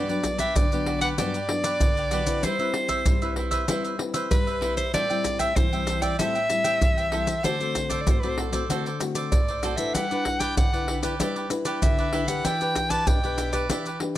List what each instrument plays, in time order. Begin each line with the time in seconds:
Already playing: nylon-string guitar G2, soprano saxophone D5
0.08 nylon-string guitar F#3 B3 D4, cavaquinho G4 B4 D5, pandeiro, maracas
0.23 muted cavaquinho stroke, pandeiro, maracas, surdo
0.38 cavaquinho G4 B4 D5, soprano saxophone E5, pandeiro, maracas, surdo
0.56 nylon-string guitar D3 F#3 B3 D4, soprano saxophone D5, pandeiro, maracas, surdo
0.72 nylon-string guitar F#3 B3 D4, cavaquinho G4 B4 D5, pandeiro, maracas
0.86 cavaquinho F#4 G4 B4 D5, pandeiro
1.01 cavaquinho G4 B4 D5, soprano saxophone F#5, pandeiro, maracas, surdo
1.18 nylon-string guitar G2 F#3 B3 D4, cavaquinho F#4 G4 B4 D5, soprano saxophone D5, pandeiro, maracas, surdo
1.34 cavaquinho G4 B4 D5, pandeiro, maracas
1.49 nylon-string guitar F#3 B3 D4, muted cavaquinho stroke, pandeiro
1.64 cavaquinho G4 B4 D5, pandeiro, maracas
1.81 nylon-string guitar D3, pandeiro, maracas, surdo
1.96 cavaquinho G4 B4 D5, pandeiro, maracas, surdo
2.11 nylon-string guitar F#3 B3 D4, cavaquinho F#4 G4 B4 D5, pandeiro, maracas
2.26 nylon-string guitar C4 E4 B4, pandeiro, maracas, surdo
2.43 nylon-string guitar G3, cavaquinho E4 B4 C5 E5, soprano saxophone C5, pandeiro, maracas, surdo
2.59 nylon-string guitar C4 E4, cavaquinho B4 C5 E5, pandeiro, maracas
2.74 muted cavaquinho stroke, pandeiro
2.89 cavaquinho C5 E5, pandeiro, maracas, surdo
3.06 nylon-string guitar G3, pandeiro, maracas, surdo
3.22 nylon-string guitar C4 E4 B4, cavaquinho B4 C5 E5, pandeiro, maracas
3.36 cavaquinho E4 B4 C5 E5, pandeiro
3.51 cavaquinho B4 C5 E5, pandeiro, maracas, surdo
3.68 nylon-string guitar G3 C4 E4 B4, cavaquinho E4 B4 C5 E5, pandeiro, maracas, surdo
3.84 cavaquinho B4 C5 E5, pandeiro, maracas
3.99 nylon-string guitar C4 E4 B4, muted cavaquinho stroke, pandeiro
4.14 cavaquinho B4 C5 E5, pandeiro, maracas
4.31 nylon-string guitar G3, soprano saxophone B4, pandeiro, maracas, surdo
4.47 cavaquinho B4 C5 E5, pandeiro, maracas, surdo
4.61 nylon-string guitar C4 E4 B4, cavaquinho E4 B4 C5 E5, pandeiro
4.77 soprano saxophone C5, pandeiro, maracas, surdo
4.93 nylon-string guitar A2 G3 C4 E4, cavaquinho A4 C5 E5 G5, soprano saxophone D5, pandeiro, maracas, surdo
5.10 nylon-string guitar G3 C4 E4, cavaquinho C5 E5 G5, pandeiro, maracas
5.24 muted cavaquinho stroke, pandeiro, maracas, surdo
5.39 cavaquinho C5 E5 G5, soprano saxophone E5, pandeiro, maracas, surdo
5.56 nylon-string guitar E3 G3 C4 E4, soprano saxophone C5, pandeiro, maracas, surdo
5.73 nylon-string guitar G3 C4 E4, cavaquinho C5 E5 G5, pandeiro, maracas
5.87 cavaquinho A4 C5 E5 G5, pandeiro, maracas
6.02 cavaquinho C5 E5 G5, soprano saxophone D5, pandeiro, maracas, surdo
6.19 nylon-string guitar A2 G3 C4 E4, cavaquinho A4 C5 E5 G5, soprano saxophone E5, pandeiro, maracas, surdo
6.35 cavaquinho C5 E5 G5, pandeiro, maracas
6.49 nylon-string guitar G3 C4 E4, muted cavaquinho stroke, pandeiro, maracas
6.64 cavaquinho C5 E5 G5, pandeiro, maracas
6.81 nylon-string guitar E3, pandeiro, maracas, surdo
6.97 cavaquinho C5 E5 G5, pandeiro, maracas, surdo
7.12 nylon-string guitar G3 C4 E4, cavaquinho A4 C5 E5 G5, pandeiro
7.27 pandeiro, maracas, surdo
7.43 nylon-string guitar D3 A3 C4 F#4, cavaquinho F#4 A4 C5 D5, soprano saxophone C5, pandeiro, maracas, surdo
7.60 nylon-string guitar A3 C4 F#4, cavaquinho A4 C5 D5, pandeiro, maracas
7.75 muted cavaquinho stroke, pandeiro, maracas, surdo
7.90 cavaquinho A4 C5 D5, pandeiro, maracas, surdo
8.01 soprano saxophone D5
8.06 nylon-string guitar A2 A3 C4 F#4, pandeiro, maracas, surdo
8.10 soprano saxophone C5
8.20 nylon-string guitar A3 C4, soprano saxophone B4, cavaquinho D5, pandeiro, maracas
8.24 nylon-string guitar F#4, cavaquinho A4 C5
8.29 soprano saxophone C5
8.38 cavaquinho F#4 A4 C5 D5, pandeiro
8.52 nylon-string guitar A3 C4 F#4, cavaquinho A4 C5 D5, pandeiro, maracas, surdo
8.69 nylon-string guitar D3 A3 C4 F#4, cavaquinho F#4 A4 C5 D5, pandeiro, maracas, surdo
8.86 cavaquinho A4 C5 D5, pandeiro, maracas
9.00 nylon-string guitar A3 C4 F#4, muted cavaquinho stroke, pandeiro, maracas
9.15 cavaquinho A4 C5 D5, pandeiro, maracas
9.32 nylon-string guitar A2, soprano saxophone D5, pandeiro, maracas, surdo
9.48 cavaquinho A4 C5 D5, pandeiro, maracas, surdo
9.63 nylon-string guitar A3 C4 F#4, cavaquinho F#4 A4 C5 D5, pandeiro, maracas
9.77 nylon-string guitar D4 E4 B4, soprano saxophone E5, pandeiro, maracas, surdo
9.94 nylon-string guitar G3, cavaquinho E4 G4 B4 D5, soprano saxophone F#5, pandeiro, maracas, surdo
10.11 nylon-string guitar D4 E4 B4, cavaquinho G4 B4 D5, pandeiro, maracas
10.25 muted cavaquinho stroke, pandeiro, surdo
10.39 cavaquinho G4 B4 D5, soprano saxophone G5, pandeiro, maracas, surdo
10.57 nylon-string guitar D3, soprano saxophone F#5, pandeiro, maracas, surdo
10.73 nylon-string guitar D4 E4 B4, cavaquinho G4 B4 D5, pandeiro, maracas
10.88 cavaquinho E4 G4 B4 D5, pandeiro
11.02 nylon-string guitar D4 E4 B4, cavaquinho G4 B4 D5, pandeiro, maracas, surdo
11.19 nylon-string guitar G3 D4 E4 B4, cavaquinho E4 G4 B4 D5, pandeiro, maracas, surdo
11.36 cavaquinho G4 B4 D5, pandeiro, maracas
11.50 nylon-string guitar D4 E4 B4, muted cavaquinho stroke, pandeiro, maracas
11.65 cavaquinho G4 B4 D5, pandeiro, maracas
11.82 nylon-string guitar D3, soprano saxophone E5, pandeiro, maracas, surdo
11.98 cavaquinho G4 B4 D5, pandeiro, maracas, surdo
12.13 nylon-string guitar D4 E4 B4, cavaquinho E4 G4 B4 D5, pandeiro
12.28 nylon-string guitar D4 G4 B4, soprano saxophone F#5, pandeiro, maracas, surdo
12.45 nylon-string guitar E3, cavaquinho E4 G4 B4 D5, soprano saxophone G5, pandeiro, maracas, surdo
12.61 nylon-string guitar D4 G4 B4, cavaquinho G4 B4 D5, pandeiro, maracas
12.75 muted cavaquinho stroke, pandeiro, maracas, surdo
12.90 cavaquinho G4 B4 D5, soprano saxophone A5, pandeiro, maracas, surdo
13.07 nylon-string guitar B2 D4 G4 B4, soprano saxophone G5, pandeiro, maracas, surdo
13.23 nylon-string guitar D4 G4 B4, cavaquinho G4 B4 D5, pandeiro, maracas
13.38 cavaquinho E4 G4 B4 D5, pandeiro, maracas
13.53 nylon-string guitar D4 G4 B4, cavaquinho G4 B4 D5, pandeiro, maracas, surdo
13.70 nylon-string guitar E3 D4 G4 B4, cavaquinho E4 G4 B4 D5, pandeiro, maracas, surdo
13.86 cavaquinho G4 B4 D5, pandeiro, maracas
14.00 nylon-string guitar D4 G4 B4, muted cavaquinho stroke, pandeiro